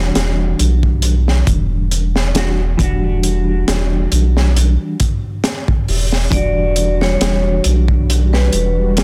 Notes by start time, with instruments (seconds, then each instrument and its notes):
Already playing: analog synth bass E1, clean electric guitar E3 G3 D4 F#4
0.15 analog synth bass E1, snare, closed hi-hat
0.59 analog synth bass B1, closed hi-hat
0.83 kick
1.02 closed hi-hat
1.28 snare
1.47 analog synth bass E1, kick, closed hi-hat
1.91 closed hi-hat
2.16 snare
2.35 clean electric guitar E3 G3 D4 F#4, snare, closed hi-hat
2.78 analog synth bass E1, clean electric guitar E3 G3 D4, kick, closed hi-hat
2.83 clean electric guitar F#4
3.23 closed hi-hat
3.68 analog synth bass E1, snare, closed hi-hat
4.12 analog synth bass B1, closed hi-hat
4.37 snare
4.56 analog synth bass B1, closed hi-hat
5.00 kick, closed hi-hat
5.44 snare, closed hi-hat
5.68 kick
5.88 analog synth bass E1, open hi-hat
6.12 snare
6.30 analog synth bass E1, clean electric guitar E3 G3, string machine G3 F#4, vibraphone D5, kick, closed hi-hat
6.34 clean electric guitar D4 F#4
6.76 closed hi-hat
7.01 vibraphone C#5, snare
7.21 analog synth bass E1, snare, closed hi-hat
7.64 analog synth bass B1, closed hi-hat
7.88 kick
8.10 closed hi-hat
8.33 vibraphone B4, snare
8.53 analog synth bass E1, closed hi-hat
8.97 snare, closed hi-hat